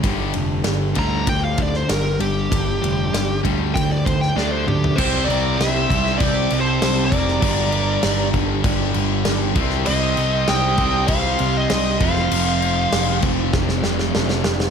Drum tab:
CC |----------------|----------------|x-x-x-x-x-x-x-x-|x-x-x-x-x-x-x-x-|
RD |x-x-x-x-x-x-x-x-|x-x-x-x-x-x-----|----------------|----------------|
SD |----o------oo---|----o------oo---|----o--o----o--o|----o-------o--o|
T2 |----------------|--------------o-|----------------|----------------|
FT |----------------|---------------o|----------------|----------------|
BD |o-----o-o-o-----|o-----o-o-o-----|o-----o-o-----o-|o-----o-o-----o-|

CC |x-x-x-x-x-x-x-x-|x-x-x-x---------|
RD |----------------|----------------|
SD |----o-------o--o|----o---oooooooo|
T2 |----------------|----------------|
FT |----------------|----------------|
BD |------o-o-----o-|------o-o-------|